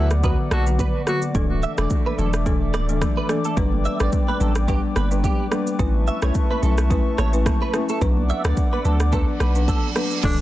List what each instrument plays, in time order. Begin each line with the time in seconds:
Already playing: sub bass D2, marimba D3 F#3 B3 F#4, analog synth pad B4 D5 F#5 D6
0.10 cross-stick, shaker
0.23 marimba D3 F#3 B3 F#4, clean electric guitar B4, kick, shaker
0.51 sub bass B1, alto saxophone F#4, clean electric guitar A4, cross-stick, high conga, shaker
0.67 marimba D3 F#3 B3 F#4, shaker
0.79 clean electric guitar B4, kick, high conga, low conga, shaker
1.07 marimba D3 F#3 B3 F#4, alto saxophone F#4, cross-stick, high conga, shaker
1.22 high conga, shaker
1.34 sub bass D1, marimba E3 A3 D4 A4, analog synth pad A4 E5, kick, low conga, shaker
1.50 high conga
1.63 clean electric guitar E5, shaker
1.78 sub bass E1, marimba E3 A3 D4 A4, clean electric guitar D5, cross-stick, shaker
1.90 kick, shaker
2.06 clean electric guitar B4, high conga
2.18 sub bass E1, marimba E3 A3 D4 A4, clean electric guitar A4, low conga, shaker
2.33 cross-stick, shaker
2.46 marimba E3 A3 D4 A4, kick, shaker
2.74 sub bass D1, clean electric guitar D5, cross-stick, high conga, shaker
2.89 marimba E3 A3 D4 A4, shaker
3.01 kick, cross-stick, high conga, low conga, shaker
3.17 clean electric guitar B4
3.29 marimba E3 A3 D4 A4, cross-stick, high conga, shaker
3.44 clean electric guitar A4, shaker
3.57 sub bass G1, marimba G3 B3 D4 B4, analog synth pad B4 G5, kick, low conga, shaker
3.72 high conga
3.85 clean electric guitar E5, shaker
4.00 sub bass A1, marimba G3 B3 D4 B4, clean electric guitar D5, cross-stick, shaker
4.12 kick, shaker
4.28 clean electric guitar B4, high conga
4.40 sub bass A1, marimba G3 B3 D4 B4, clean electric guitar A4, low conga, shaker
4.55 cross-stick, shaker
4.68 marimba G3 B3 D4 B4, clean electric guitar G4, kick, shaker
4.96 sub bass G1, clean electric guitar B4, cross-stick, high conga, shaker
5.11 marimba G3 B3 D4 B4, shaker
5.24 clean electric guitar G4, kick, high conga, low conga, shaker
5.51 marimba G3 B3 D4 B4, cross-stick, high conga, shaker
5.67 shaker
5.79 sub bass A1, marimba A3 C#4 E4 B4, analog synth pad E5 A5 C#6, kick, low conga, shaker
5.95 high conga
6.07 clean electric guitar E5, shaker
6.22 sub bass B1, marimba A3 C#4 E4 B4, clean electric guitar C#5, cross-stick, shaker
6.35 kick, shaker
6.50 clean electric guitar B4, high conga
6.62 sub bass B1, marimba A3 C#4 E4 B4, clean electric guitar A4, low conga, shaker
6.78 cross-stick, shaker
6.90 marimba A3 C#4 E4 B4, kick, shaker
7.18 sub bass A1, clean electric guitar C#5, cross-stick, high conga, shaker
7.33 marimba A3 C#4 E4 B4, shaker
7.46 kick, cross-stick, high conga, low conga, shaker
7.62 clean electric guitar B4
7.74 marimba A3 C#4 E4 B4, cross-stick, high conga, shaker
7.89 clean electric guitar A4, shaker
8.01 sub bass B1, marimba F#3 B3 D4 B4, analog synth pad D5 F#5 D6, kick, low conga, shaker
8.17 high conga
8.30 clean electric guitar E5, shaker
8.44 sub bass D2, marimba F#3 B3 D4 B4, clean electric guitar D5, cross-stick, shaker
8.57 kick, shaker
8.73 clean electric guitar B4, high conga
8.85 sub bass D2, marimba F#3 B3 D4 B4, clean electric guitar A4, low conga, shaker
9.00 cross-stick, shaker
9.12 marimba F#3 B3 D4 B4, clean electric guitar A4, kick, reverse cymbal, shaker
9.40 sub bass B1, clean electric guitar B4, cross-stick, high conga, shaker
9.55 marimba F#3 B3 D4 B4, shaker
9.68 clean electric guitar A4, kick, high conga, low conga, shaker
9.95 marimba F#3 B3 D4 B4, cross-stick, high conga, shaker
10.11 shaker
10.23 sub bass D1, marimba E3 A3 D4 A4, alto saxophone D4, kick, crash, low conga, shaker